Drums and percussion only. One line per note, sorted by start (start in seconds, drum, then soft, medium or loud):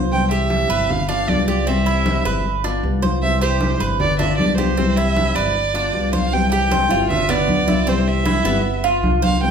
0.11 high conga soft
0.31 high conga soft
0.50 high conga medium
0.70 high conga soft
0.89 high conga soft
0.89 low conga medium
1.09 high conga soft
1.28 high conga medium
1.67 high conga soft
1.86 high conga soft
2.06 high conga medium
2.25 high conga soft
2.44 high conga soft
2.64 high conga soft
2.83 high conga soft
3.03 high conga medium
3.22 high conga soft
3.41 high conga soft
3.61 high conga medium
3.81 high conga soft
4.00 high conga soft
4.00 low conga medium
4.20 high conga soft
4.20 low conga medium
4.39 high conga medium
4.58 high conga medium
4.78 high conga soft
4.97 high conga soft
5.16 high conga medium
5.36 high conga soft
5.55 high conga soft
5.75 high conga soft
5.94 high conga soft
6.14 high conga medium
6.34 high conga soft
6.53 high conga soft
6.71 high conga medium
6.91 high conga soft
7.10 high conga soft
7.10 low conga medium
7.30 high conga soft
7.30 low conga medium
7.49 high conga medium
7.68 high conga medium
7.87 high conga soft
8.06 high conga soft
8.26 high conga medium
8.46 high conga soft
8.65 high conga soft
8.84 high conga soft
9.04 high conga medium
9.23 high conga medium
9.43 high conga soft